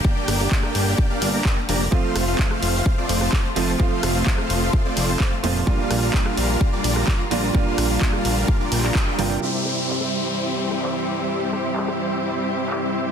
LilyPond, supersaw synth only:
\new Staff \with { instrumentName = "Supersaw synth" } { \time 4/4 \key c \mixolydian \tempo 4 = 128 <bes d' g' d'' g''>8. <bes d' g' d'' g''>4. <bes d' g' d'' f''>8 <bes d' g' d'' bes''>16 <bes d' g' d'' bes''>16 r16 <bes d' g' d'' bes''>16 r16 | <a c' f' c'' f''>8. <a c' f' c'' f''>4. <a c' f' c'' d''>8 <a c' f' c'' a''>16 <a c' f' c'' a''>16 r16 <a c' f' c'' a''>16 r16 | <a c' f' c'' f''>8. <a c' f' c'' f''>4. <a c' f' c'' d''>8 <a c' f' c'' a''>16 <a c' f' c'' a''>16 r16 <a c' f' c'' a''>16 r16 | <g d' f' bes' f''>8. <g d' f' bes' f''>4. <g d' f' bes' d''>8 <g d' f' bes' bes''>16 <g d' f' bes' bes''>16 r16 <g d' f' bes' bes''>16 r16 |
<g d' f' bes' f''>8. <g d' f' bes' f''>4. <g d' f' bes' d''>16 <g d' f' bes' g''>16 <g d' f' bes' bes''>8 <g d' f' bes' g''>16 <g d' f' bes' g''>8 | <g c' e' c'' e''>1~ | <g c' e' c'' e''>1 | }